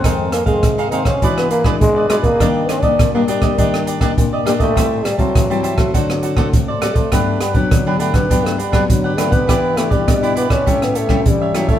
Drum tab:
HH |x-xxxxxxxxx-x-xx|x-xxx-xxxxxxx-xx|x-xxxxxxxxx-x-xx|x-xxx-xxxxxxx-xx|
SD |r-r-r--r-r-r--r-|r-r-r--r-r-r--r-|r-r-r--r-r-r--r-|r-r-r--r-r-r--r-|
BD |o--oo--oo--oo--o|o--oo--oo--oo--o|o--oo--oo--oo--o|o--oo--oo--oo--o|

HH |x-xxxxxxxxx-x-xx|
SD |r-r-r--r-r-r--r-|
BD |o--oo--oo--oo--o|